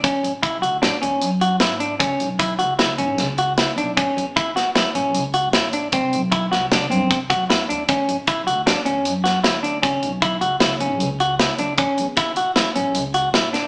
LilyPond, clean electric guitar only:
\new Staff \with { instrumentName = "Clean electric guitar" } { \time 5/4 \key d \lydian \tempo 4 = 153 cis'4 e'8 fis'8 d'8 cis'4 fis'8 e'8 d'8 | cis'4 e'8 fis'8 e'8 cis'4 fis'8 e'8 d'8 | cis'4 e'8 fis'8 e'8 cis'4 fis'8 e'8 d'8 | c'4 e'8 fis'8 d'8 c'4 fis'8 e'8 d'8 |
cis'4 e'8 fis'8 d'8 cis'4 fis'8 e'8 d'8 | cis'4 e'8 fis'8 e'8 cis'4 fis'8 e'8 d'8 | cis'4 e'8 fis'8 e'8 cis'4 fis'8 e'8 d'8 | }